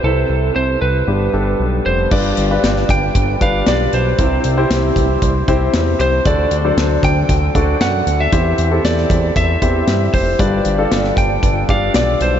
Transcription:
<<
  \new Staff \with { instrumentName = "Lead electric guitar" } { \time 4/4 \key g \mixolydian \tempo 4 = 116 a'4 c''8 b'2 c''8 | d''4. g''4 f''8 d''8 c''8~ | c''4 r2 r8 c''8 | d''4. g''4. fis''8. e''16~ |
e''4 d''4 e''4. c''8 | d''4. g''4 f''8 d''8 c''8 | }
  \new Staff \with { instrumentName = "Grand piano" } { \time 4/4 \key g \mixolydian <c' e' a' c''>4. r8 <b d' g' b'>8 <b d' g' a'>4~ <b d' g' a'>16 r16 | <d' f' g' b'>8 r16 <d' f' g' b'>4. r16 <d' f' g' b'>4~ <d' f' g' b'>16 r16 | <c' e' g' c''>8 r16 <c' e' g' c''>4. r16 <c' e' g' c''>4~ <c' e' g' c''>16 r16 | <d' fis' a' d''>8 r16 <fis d' a' c''>4. r16 <d' fis' a' d''>4~ <d' fis' a' d''>16 r16 |
<c' e' g' c''>8 r16 <c' e' g' a'>4. r16 <c' e' g' c''>4~ <c' e' g' c''>16 r16 | <d' f' g' b'>8 r16 <d' f' g' a'>4. r16 <d' f' g' d''>4~ <d' f' g' d''>16 r16 | }
  \new Staff \with { instrumentName = "Grand piano" } { \clef bass \time 4/4 \key g \mixolydian c4. r8 g,4. r8 | g,4. r2 r8 | c4. r2 r8 | d4. r2 r8 |
e4. r2 r8 | g,4. r2 r8 | }
  \new Staff \with { instrumentName = "Analog synth bass" } { \clef bass \time 4/4 \key g \mixolydian c,8 c,8 c,8 c,8 g,,8 g,,8 b,,8 f,,8 | g,,8 g,,8 g,,8 g,,8 g,,8 g,,8 b,,8 b,,8 | c,8 c,8 c,8 c,8 c,8 c,8 e,8 c,8 | d,8 d,8 d,8 d,8 d,8 d,8 fis,8 d,8 |
e,8 e,8 e,8 e,8 e,8 e,8 g,8 f,,8 | g,,8 g,,8 g,,8 g,,8 g,,8 g,,8 b,,8 b,,8 | }
  \new DrumStaff \with { instrumentName = "Drums" } \drummode { \time 4/4 r4 r4 r4 r4 | <cymc bd>8 hh8 <hh sn>16 sn16 <hh bd>8 <hh bd>8 <hh bd>8 <hh sn>8 hh8 | <hh bd>8 hh8 <hh sn>8 <hh bd>8 <hh bd>8 <hh bd>8 <hh sn>8 hh8 | <hh bd>8 hh8 <hh sn>8 <hh bd>8 <hh bd>8 <hh bd>8 <hh sn>8 hh8 |
<hh bd>8 hh8 <hh sn>16 sn16 <hh bd>8 <hh bd>8 <hh bd>8 <hh sn>8 <hho bd>8 | <hh bd>8 hh8 <hh sn>16 sn16 <hh bd>8 <hh bd>8 <hh bd>8 <hh sn>8 hh8 | }
>>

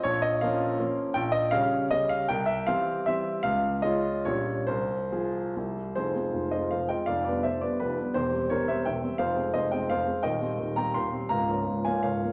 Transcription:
<<
  \new Staff \with { instrumentName = "Grand piano" } { \time 3/4 \key bes \minor \tempo 4 = 163 des''8 ees''8 f''4. r8 | \key f \minor g''8 ees''8 f''4 ees''8 f''8 | g''8 e''8 f''4 e''4 | f''4 ees''4 des''4 |
c''2~ c''8 r8 | <aes' c''>4. <c'' ees''>8 <c'' f''>8 <ees'' g''>8 | <d'' f''>8 <b' d''>8 <c'' e''>8 <b' d''>8 <g' b'>4 | <g' c''>4 <bes' des''>8 <c'' e''>8 <e'' g''>4 |
<c'' f''>4 <c'' ees''>8 <ees'' g''>8 <c'' f''>4 | <ees'' g''>4. <g'' bes''>8 <g'' c'''>4 | <f'' bes''>4. <f'' aes''>8 <des'' f''>4 | }
  \new Staff \with { instrumentName = "Grand piano" } { \clef bass \time 3/4 \key bes \minor bes,,4 <f bes des'>4 <f bes des'>4 | \key f \minor bes,,4 <des g des'>4 <des g des'>4 | c,4 <e g c'>4 <e g c'>4 | des,4 <aes des' f'>4 <bes,, g des' g'>4 |
c,4 <f f' aes'>4 <c, g e' g'>4 | <f,, f,>8 <aes c' f'>8 <f,, f,>8 <aes c' f'>8 <f,, f,>8 <aes c' f'>8 | <f,, f,>8 <g b d'>8 <f,, f,>8 <g b d'>8 <f,, f,>8 <g b d'>8 | <e,, e,>8 <g c'>8 <e,, e,>8 <g c'>8 <e,, e,>8 <g c'>8 |
<f,, f,>8 <aes c'>8 <f,, f,>8 <aes c'>8 <f,, f,>8 <aes c'>8 | <ees,, ees,>8 <g c'>8 <ees,, ees,>8 <g c'>8 <ees,, ees,>8 <g c'>8 | <des,, des,>8 <f bes des'>8 <des,, des,>8 <f bes des'>8 <des,, des,>8 <f bes des'>8 | }
>>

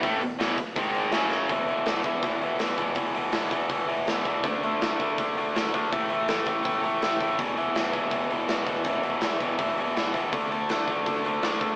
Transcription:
<<
  \new Staff \with { instrumentName = "Overdriven electric guitar" } { \clef bass \time 4/4 \key e \major \tempo 4 = 163 <a, e a>8 <e, b,>8 <e, b, e>8 r8 <gis, dis gis>4 <fis, cis fis>4 | \key d \lydian <e, b, e>8 <e, b, e>8 <e, b, e>8 <e, b, e>8 <e, b, e>8 <e, b, e>8 <e, b, e>8 <e, b, e>8 | <e, b, e>8 <e, b, e>8 <e, b, e>8 <e, b, e>8 <e, b, e>8 <e, b, e>8 <e, b, e>8 <e, b, e>8 | <d a d'>8 <d a d'>8 <d a d'>8 <d a d'>8 <d a d'>8 <d a d'>8 <d a d'>8 <d a d'>8 |
<a, e a>8 <a, e a>8 <a, e a>8 <a, e a>8 <a, e a>8 <a, e a>8 <a, e a>8 <a, e a>8 | <e, b, e>8 <e, b, e>8 <e, b, e>8 <e, b, e>8 <e, b, e>8 <e, b, e>8 <e, b, e>8 <e, b, e>8 | <e, b, e>8 <e, b, e>8 <e, b, e>8 <e, b, e>8 <e, b, e>8 <e, b, e>8 <e, b, e>8 <e, b, e>8 | <d a d'>8 <d a d'>8 <d a d'>8 <d a d'>8 <d a d'>8 <d a d'>8 <d a d'>8 <d a d'>8 | }
  \new Staff \with { instrumentName = "Distorted electric guitar" } { \clef bass \time 4/4 \key e \major <a, e a>8 <e, b,>8 <e, b, e>8 r8 <gis, dis gis>4 <fis, cis fis>4 | \key d \lydian r1 | r1 | r1 |
r1 | r1 | r1 | r1 | }
  \new Staff \with { instrumentName = "Picked electric bass" } { \clef bass \time 4/4 \key e \major a,,8 e,,8 e,,8 r8 gis,,4 fis,,4 | \key d \lydian e,,8 e,,8 e,,8 e,,8 e,,8 e,,8 e,,8 e,,8 | e,,8 e,,8 e,,8 e,,8 e,,8 e,,8 e,,8 e,,8 | d,8 d,8 d,8 d,8 d,8 d,8 d,8 d,8 |
a,,8 a,,8 a,,8 a,,8 a,,8 a,,8 a,,8 a,,8 | e,,8 e,,8 e,,8 e,,8 e,,8 e,,8 e,,8 e,,8 | e,,8 e,,8 e,,8 e,,8 e,,8 e,,8 e,,8 e,,8 | d,8 d,8 d,8 d,8 d,8 d,8 d,8 d,8 | }
  \new DrumStaff \with { instrumentName = "Drums" } \drummode { \time 4/4 <hho bd>8 hho8 <hho sn>8 <hho bd>8 <hho bd>8 hho8 <hho sn>8 sn8 | <hho bd>8 hho8 <hho sn>8 <hho bd>8 <hho bd>8 hho8 <hho sn>8 <hho bd>8 | <hho bd>8 hho8 <hho sn>8 <hho bd>8 <hho bd>8 hho8 <hho sn>8 <hho bd>8 | <hho bd>8 hho8 <hho sn>8 <hho bd>8 <hho bd>8 hho8 <hho sn>8 <hho bd>8 |
<hho bd>8 hho8 <hho sn>8 <hho bd>8 <hho bd>8 hho8 <hho sn>8 <hho bd>8 | <hho bd>8 hho8 <hho sn>8 <hho bd>8 <hho bd>8 hho8 <hho sn>8 <hho bd>8 | <hho bd>8 hho8 <hho sn>8 <hho bd>8 <hho bd>8 hho8 <hho sn>8 <hho bd>8 | <hho bd>8 hho8 <hho sn>8 <hho bd>8 <hho bd>8 hho8 <hho sn>8 <hho bd>8 | }
>>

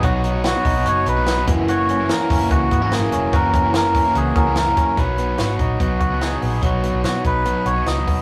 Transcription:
<<
  \new Staff \with { instrumentName = "Melodica" } { \time 4/4 \key b \major \tempo 4 = 146 fis'4 fis'4 cis''8 b'4 r8 | cis''4 ais'4 fis'4 gis'4 | ais'4 ais'4 gis'8 <gis' ais'>8 ais'4 | b'4. fis'8 fis'4 gis'4 |
fis'4 fis'8 b'4 cis''8 dis''4 | }
  \new Staff \with { instrumentName = "Synth keys" } { \time 4/4 \key b \major <b dis' fis'>2.~ <b dis' fis'>8 <ais e' fis'>8~ | <ais e' fis'>1~ | <ais e' fis'>2~ <ais e' fis'>8 <ais e' fis'>4. | r1 |
r1 | }
  \new Staff \with { instrumentName = "Clean electric guitar" } { \time 4/4 \key b \major <fis b dis' fis'>8 dis'8 b8 dis'8 fis'8 dis'8 b8 e8 | <e fis'>8 cis'8 ais8 cis'8 fis'8 b16 cis'16 ais8 cis'8 | <e fis'>8 cis'8 ais8 cis'8 fis'8 cis'8 ais8 cis'8 | fis8 b8 fis'8 dis'8 b8 fis'8 dis'8 b8 |
fis8 b8 fis'8 dis'8 b8 fis'8 dis'8 b8 | }
  \new Staff \with { instrumentName = "Overdriven electric guitar" } { \time 4/4 \key b \major <fis b dis' fis'>8. <b dis' fis'>8 <b dis' fis'>8 <b dis' fis'>4 <b, fis b dis' fis'>8 <b, fis b dis' fis'>16 <fis, cis e ais e'>8~ | <fis, cis e ais e'>8. <e ais e'>8 <e ais e'>8 <e ais e'>4 <fis, cis e ais e'>8 <fis, cis e ais e'>8. | <cis e ais e'>8. <e ais e'>8 <e ais e'>8 <e ais e'>4 <fis, cis e ais e'>8 <fis, cis e ais e'>8. | <b, fis b dis' fis'>8 <fis b dis' fis'>8. <b dis' fis'>8. <fis b dis' fis'>8. <b dis' fis'>8 <b, fis b dis' fis'>8. |
<b, fis b dis' fis'>8 <fis b dis' fis'>8. <b dis' fis'>8. <fis b dis' fis'>8. <b dis' fis'>8 <b, fis b dis' fis'>8. | }
  \new Staff \with { instrumentName = "Fingered electric bass" } { \clef bass \time 4/4 \key b \major b,,4~ b,,16 r16 b,,8 fis,,8 b,,4 fis,,8~ | fis,,4~ fis,,16 r16 fis,,8 cis,8 gis,,4 e,,8 | fis,,2 cis,8 cis,4 r8 | b,,4 gis,,8 ais,,8 b,,8 cis,4 ais,,8 |
b,,8. b,,16 b,8 b,,8. r16 b,,8 cis,8 dis,8 | }
  \new DrumStaff \with { instrumentName = "Drums" } \drummode { \time 4/4 <hho hhp bd>8 <hho hhp>8 <hho hhp sn>8 <hho hhp bd>8 <hho hhp>8 <hho hhp>8 <hho hhp sn>8 <hho hhp bd>8 | <hho hhp>8 <hho hhp>8 <hho hhp sn>8 <hho hhp bd>8 <hho hhp bd>8 <hho hhp bd>8 <hho hhp sn>8 <hho hhp>8 | <hho hhp bd>8 <hho hhp bd>8 <hho hhp sn>8 <hho hhp bd>8 <hho hhp>8 <hho hhp bd>8 <hho hhp sn>8 <hho hhp bd>8 | <hh bd>8 hh8 <hh sn>8 <hh bd>8 <hh bd>8 <hh bd>8 <hh sn>8 hho8 |
<hh bd>8 hh8 <hh sn>8 <hh bd>8 hh8 hh8 <hh sn>8 <hho bd>8 | }
>>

